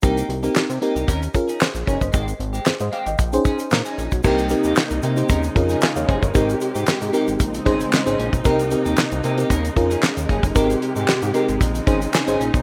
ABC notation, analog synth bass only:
X:1
M:4/4
L:1/16
Q:1/4=114
K:Cphr
V:1 name="Analog synth bass" clef=bass
C,,2 C,,2 C, C, z C,, E,,2 z3 B,,, _G,,, =G,,, | A,,,2 A,,,2 A,, A,, z A,,, B,,,2 z2 B,, z B,,, _C,, | C,,3 E,, z C,, C,2 E,,2 F,,2 z E,, _G,,, =G,,, | A,,,2 z A,, A,, A,, z A,,, B,,,2 A,,,2 z A,,, B,,, _C,, |
C,,3 E,, z C,, C,2 E,,2 F,,2 z E,, _G,,, =G,,, | A,,,2 z A,, A,, A,, z A,,, B,,,2 A,,,2 z A,,, B,,, _C,, |]